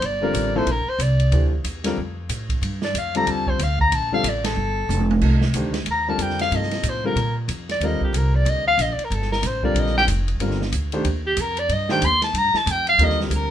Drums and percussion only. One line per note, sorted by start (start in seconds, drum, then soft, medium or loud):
0.02 ride medium
0.34 hi-hat pedal medium
0.34 ride medium
0.67 ride medium
1.00 hi-hat pedal medium
1.00 ride medium
1.20 ride soft
1.32 ride medium
1.64 hi-hat pedal medium
1.64 ride medium
1.84 snare soft
1.84 ride medium
2.29 hi-hat pedal medium
2.29 ride medium
2.49 kick medium
2.49 ride medium
2.63 ride medium
2.82 snare medium
2.95 hi-hat pedal medium
2.95 ride medium
3.15 ride medium
3.27 ride medium
3.47 kick medium
3.59 hi-hat pedal medium
3.59 ride medium
3.79 kick medium
3.92 ride medium
4.24 hi-hat pedal medium
4.24 ride medium
4.44 snare medium
4.44 ride medium
4.90 hi-hat pedal medium
4.90 high tom medium
5.00 high tom medium
5.11 high tom medium
5.21 kick medium
5.21 crash medium
5.41 snare medium
5.54 hi-hat pedal medium
5.54 ride medium
5.74 snare medium
5.74 ride soft
5.86 ride medium
6.19 hi-hat pedal medium
6.19 ride medium
6.30 snare soft
6.39 snare soft
6.39 ride medium
6.52 ride medium
6.62 snare soft
6.71 snare soft
6.71 ride medium
6.83 hi-hat pedal medium
6.83 ride medium
7.17 ride medium
7.49 hi-hat pedal medium
7.49 ride medium
7.69 snare soft
7.69 ride soft
7.81 ride medium
8.01 kick medium
8.14 hi-hat pedal medium
8.14 ride medium
8.46 ride medium
8.79 hi-hat pedal medium
8.79 ride medium
8.99 ride soft
9.12 ride medium
9.22 snare soft
9.32 snare medium
9.43 snare soft
9.43 hi-hat pedal medium
9.43 ride medium
9.63 kick medium
9.76 ride medium
9.86 snare soft
9.97 snare soft
10.08 hi-hat pedal medium
10.08 ride medium
10.28 ride medium
10.40 ride medium
10.51 snare soft
10.62 snare medium
10.72 hi-hat pedal medium
10.72 ride medium
10.92 ride medium
11.05 ride medium
11.37 hi-hat pedal medium
11.37 ride medium
11.57 ride medium
11.69 ride medium
11.89 snare medium
12.02 hi-hat pedal medium
12.02 ride medium
12.22 snare soft
12.22 ride medium
12.35 ride medium
12.54 snare medium
12.67 hi-hat pedal medium
12.67 ride medium
12.87 ride medium
12.99 ride medium
13.10 snare soft
13.20 snare medium
13.31 hi-hat pedal medium
13.31 ride medium